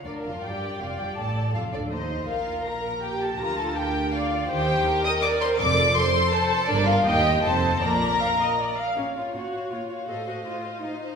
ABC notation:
X:1
M:3/4
L:1/8
Q:1/4=162
K:Bb
V:1 name="Violin section"
d f g2 f g | a2 f d e2 | f2 b2 g a | b a g2 f2 |
g3 e' d' c' | d'2 c'2 a2 | d f g2 a2 | b4- b z |
[K:Bbm] f f f f f f | f f f f f f |]
V:2 name="Viola section"
B2 d2 d2- | d2 A2 c2 | B4 G2 | F2 B2 d2 |
c2 B4 | A2 A2 c2 | B2 e2 c2 | d2 f e d f |
[K:Bbm] D F G2 F G | =A G F2 E2 |]
V:3 name="Violin section"
D F G2 F G | A2 F D E2 | F2 B2 G A | B A G2 F2 |
G3 e d c | d2 c2 A2 | D F G2 A2 | B4- B z |
[K:Bbm] d d d d d d | [ce] [ce] [ce] [ce] [ce] [ce] |]
V:4 name="Cello section" clef=bass
D,, F,, G,,2 F,, G,, | A,,2 F,, D,, E,,2 | B,,6 | D,6 |
E,2 z4 | F,,2 z4 | G,,2 E,,2 F,,2 | B,,2 z4 |
[K:Bbm] B,,2 B,,2 B,,2 | =A,,2 A,,2 A,,2 |]
V:5 name="Double bass section" clef=bass
D,, F,,, G,,,2 F,,, G,,, | A,,,2 F,,, D,, E,,2 | B,,,6 | D,,6 |
E,,2 z4 | F,,,2 z4 | G,,,2 E,,2 F,,,2 | B,,,2 z4 |
[K:Bbm] z6 | z6 |]